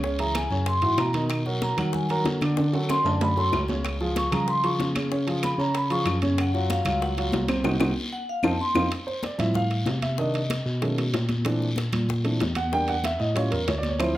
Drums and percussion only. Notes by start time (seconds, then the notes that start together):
0.03 high bongo, high conga, long guiro
0.19 high bongo, high conga, high timbale
0.34 high bongo, high conga, high timbale, short guiro, claves
0.50 high conga, short guiro
0.66 high bongo, high conga, high timbale, long guiro
0.82 high bongo, high conga, high timbale
0.98 high bongo, low bongo, high conga, high timbale, low timbale, short guiro, claves
1.13 high bongo, high conga, high timbale, short guiro
1.30 high bongo, high conga, high timbale, long guiro, claves
1.46 high bongo, high conga
1.62 high bongo, high conga, high timbale, short guiro
1.78 high conga, low conga, high timbale, short guiro, claves
1.93 high bongo, high conga, low conga, long guiro
2.09 high bongo, high conga, high timbale
2.25 high bongo, low bongo, high conga, high timbale, short guiro
2.41 high bongo, high conga, high timbale, short guiro, claves
2.57 high bongo, high conga, high timbale, long guiro
2.73 high bongo, high conga, high timbale
2.89 high bongo, high conga, high timbale, short guiro, claves
3.05 high conga, low timbale, short guiro
3.21 high bongo, low timbale, long guiro
3.37 high bongo, high conga
3.52 high bongo, low bongo, high conga, low timbale, short guiro, claves
3.68 high bongo, high conga, low timbale, short guiro
3.85 high bongo, high conga, high timbale, long guiro, claves
4.00 high bongo, high conga
4.16 high bongo, high conga, high timbale, short guiro
4.32 high conga, low conga, high timbale, short guiro, claves
4.48 high bongo, high conga, long guiro
4.64 high bongo, high conga, high timbale
4.80 high bongo, low bongo, high conga, high timbale, short guiro
4.95 high bongo, high conga, high timbale, short guiro, claves
5.12 high bongo, long guiro
5.28 high bongo, high conga, high timbale
5.43 high bongo, high conga, high timbale, short guiro, claves
5.59 high conga, short guiro
5.75 high bongo, high conga, high timbale, long guiro
5.90 high bongo, high conga, high timbale
6.06 high bongo, low bongo, high conga, high timbale, short guiro, claves
6.22 high bongo, high conga, high timbale, short guiro
6.38 high bongo, high conga, high timbale, long guiro, claves
6.54 high bongo, high conga
6.70 high bongo, high conga, high timbale, short guiro
6.85 high conga, low conga, high timbale, short guiro, claves
7.01 high bongo, high conga, long guiro
7.17 high bongo, high conga, high timbale
7.32 high bongo, low bongo, high conga, high timbale, low timbale, short guiro
7.48 high bongo, high conga, high timbale, short guiro, claves
7.64 low bongo, high conga, high timbale, long guiro, claves
7.80 low bongo, high conga, high timbale, long guiro, claves
8.43 low bongo, high conga, high timbale, long guiro, claves
8.75 low bongo, high conga, high timbale, long guiro, claves
8.91 high bongo, high conga, high timbale, long guiro
9.07 high bongo, high conga
9.23 high bongo, high conga, high timbale, short guiro
9.39 high conga, low conga, high timbale, short guiro
9.54 high bongo, high conga, low conga, long guiro
9.70 high bongo, high conga, high timbale
9.86 high bongo, low bongo, high conga, high timbale, low timbale, short guiro
10.02 high bongo, high conga, high timbale, short guiro
10.18 high bongo, long guiro
10.34 high bongo, high conga, high timbale
10.50 high bongo, high conga, high timbale, short guiro
10.66 high conga, short guiro
10.82 high bongo, high conga, high timbale, long guiro
10.98 high bongo, high conga, high timbale
11.13 high bongo, low bongo, high conga, high timbale, low timbale, short guiro
11.29 high bongo, high conga, high timbale, short guiro
11.45 high bongo, high conga, high timbale, long guiro
11.61 high bongo, high conga
11.76 high bongo, high conga, high timbale, short guiro
11.92 high conga, low conga, high timbale, short guiro
12.09 high bongo, high conga, low conga, long guiro
12.25 high bongo, high conga, high timbale
12.40 high bongo, low bongo, high conga, high timbale, low timbale, short guiro
12.55 high bongo, high conga, high timbale, short guiro
12.72 high bongo, high conga, long guiro
12.88 high bongo, high conga, high timbale
13.04 high bongo, high conga, high timbale, short guiro
13.20 high conga, short guiro
13.35 high bongo, high conga, high timbale, long guiro
13.52 high bongo, high conga, high timbale
13.68 high bongo, low bongo, high conga, high timbale, low timbale, short guiro
13.83 high bongo, high conga, high timbale, short guiro
14.00 high bongo, high conga, high timbale, long guiro, claves